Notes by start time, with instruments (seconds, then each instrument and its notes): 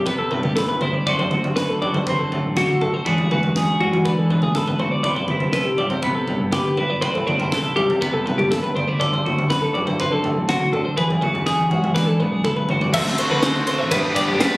Already playing: picked electric bass C3, clean electric guitar C3 G3 E4 A4
0.06 clean electric guitar B3 B4, kick, floor tom
0.18 picked electric bass C3, clean electric guitar A4
0.31 clean electric guitar G2 B4, floor tom
0.43 picked electric bass G2, clean electric guitar G4, mid tom
0.56 clean electric guitar A4 B4, kick, snare, mid tom
0.69 clean electric guitar B4, floor tom
0.81 picked electric bass B1, clean electric guitar E4 C5, floor tom, mid tom
0.93 clean electric guitar D5
1.07 picked electric bass D2, clean electric guitar D3 F#3 C4 F#4 A4 D5, kick, floor tom
1.19 clean electric guitar C5, floor tom
1.31 picked electric bass D2, clean electric guitar F#4, floor tom, mid tom
1.44 floor tom
1.56 clean electric guitar B4, kick, snare
1.69 picked electric bass D2, clean electric guitar A4
1.82 clean electric guitar F#3 D5, floor tom
1.93 picked electric bass D3, clean electric guitar C5, floor tom
2.07 clean electric guitar C4 B4, kick, floor tom
2.18 picked electric bass D3, clean electric guitar A4
2.32 clean electric guitar A2, floor tom
2.44 picked electric bass A1
2.57 clean electric guitar F#4 G4, kick, snare, mid tom
2.69 clean electric guitar A4
2.81 picked electric bass C2, clean electric guitar F#4 A4, floor tom
2.94 clean electric guitar C5
3.05 picked electric bass E2, clean electric guitar E3 G#3 D4 F#4 G#4 B4, kick, floor tom
3.18 clean electric guitar G#4, floor tom
3.31 picked electric bass E2, clean electric guitar F#4 B4, floor tom, mid tom
3.43 floor tom
3.56 clean electric guitar G#4, kick, snare
3.68 picked electric bass E2
3.80 clean electric guitar G#3 F#4, floor tom
3.92 picked electric bass E3, floor tom
4.05 clean electric guitar D4 B4, kick, floor tom
4.17 picked electric bass E3, clean electric guitar A4
4.30 clean electric guitar B2 B4, floor tom
4.42 picked electric bass B1, clean electric guitar G#4, mid tom
4.55 picked electric bass G#1, clean electric guitar A4 B4, kick, snare, mid tom
4.68 clean electric guitar B4, floor tom
4.79 picked electric bass B1, clean electric guitar F#4 C5, floor tom, mid tom
4.91 clean electric guitar D5
5.03 picked electric bass C2, clean electric guitar C3 B4 D5, kick, floor tom
5.16 clean electric guitar C5, floor tom
5.28 picked electric bass C2, clean electric guitar E4, floor tom, mid tom
5.40 floor tom
5.53 clean electric guitar A4 B4, kick, snare
5.65 picked electric bass C2, clean electric guitar G4
5.78 clean electric guitar G3 D5, floor tom
5.90 picked electric bass C3, clean electric guitar C5, floor tom
6.02 clean electric guitar B3 B4, kick, floor tom
6.14 picked electric bass C3, clean electric guitar A4
6.28 clean electric guitar G2, floor tom
6.40 picked electric bass G2
6.52 clean electric guitar G4 B4, kick, snare, mid tom
6.77 picked electric bass B1, clean electric guitar E4 B4, floor tom
6.90 clean electric guitar D5
7.01 picked electric bass C2, clean electric guitar C3 B4 C5, kick, floor tom
7.14 clean electric guitar A4, floor tom
7.25 picked electric bass C2, clean electric guitar D4 C5, floor tom, mid tom
7.39 clean electric guitar E4, floor tom
7.51 clean electric guitar A4, kick, snare
7.64 picked electric bass C2
7.76 clean electric guitar G3 G4, floor tom
7.89 picked electric bass C3, floor tom
8.01 clean electric guitar B3 B4, kick, floor tom
8.14 picked electric bass C3, clean electric guitar A4
8.26 clean electric guitar G2 B4, floor tom
8.38 picked electric bass G2, clean electric guitar G4, mid tom
8.51 clean electric guitar A4 B4, kick, snare, mid tom
8.63 clean electric guitar B4, floor tom
8.75 picked electric bass C2, clean electric guitar D4 C5, floor tom, mid tom
8.88 clean electric guitar E4 D5
9.00 picked electric bass D2, clean electric guitar D3 A4 D5, kick, floor tom
9.13 clean electric guitar C5, floor tom
9.25 picked electric bass D2, clean electric guitar F#4, floor tom, mid tom
9.39 floor tom
9.50 clean electric guitar B4, kick, snare
9.62 picked electric bass D2, clean electric guitar A4
9.74 clean electric guitar F#3 D5, floor tom
9.86 picked electric bass D3, clean electric guitar C5, floor tom
9.99 clean electric guitar C4 B4, kick, floor tom
10.11 picked electric bass D3, clean electric guitar A4
10.23 clean electric guitar A2, floor tom
10.34 picked electric bass A1
10.49 clean electric guitar C3 F#4, kick, snare, mid tom
10.71 picked electric bass C2, clean electric guitar D3 A4, floor tom
10.85 clean electric guitar C5
10.97 picked electric bass E2, clean electric guitar E3 G#4 B4, kick, floor tom
11.10 clean electric guitar G#4, floor tom
11.21 picked electric bass E2, clean electric guitar F#4 B4, floor tom, mid tom
11.35 floor tom
11.46 clean electric guitar G#4, kick, snare
11.58 picked electric bass E2
11.70 clean electric guitar G#3 F#4, floor tom
11.84 picked electric bass E3, floor tom
11.95 clean electric guitar D4 B4, kick, snare
12.07 picked electric bass E3, clean electric guitar A4
12.19 picked electric bass G#1, clean electric guitar B2 B4, high tom
12.32 clean electric guitar G#4
12.44 picked electric bass B1, clean electric guitar A4 B4, kick, mid tom
12.57 clean electric guitar B4, mid tom
12.69 picked electric bass D2, clean electric guitar F#4 C5, floor tom
12.81 clean electric guitar D5, floor tom
12.93 picked electric bass D2, overdriven electric guitar D3 A3 C4 F#4, clean electric guitar E5, kick, crash
13.06 snare
13.17 overdriven electric guitar A3 C4 F#4, clean electric guitar C5, ride
13.31 picked electric bass D3, clean electric guitar B4
13.42 overdriven electric guitar D3 A3 C4 F#4, clean electric guitar C5, snare, ride
13.56 picked electric bass D2
13.67 clean electric guitar C5, ride
13.79 picked electric bass A1, clean electric guitar E5
13.91 picked electric bass G1, overdriven electric guitar G2 D3 G3 B3 D4 G4, clean electric guitar B4, kick, ride
14.05 picked electric bass G1
14.15 overdriven electric guitar G3 B3 D4 G4, clean electric guitar D5, kick, ride
14.29 picked electric bass G1, clean electric guitar G4
14.40 overdriven electric guitar G3 B3 D4 G4, clean electric guitar B4, snare, ride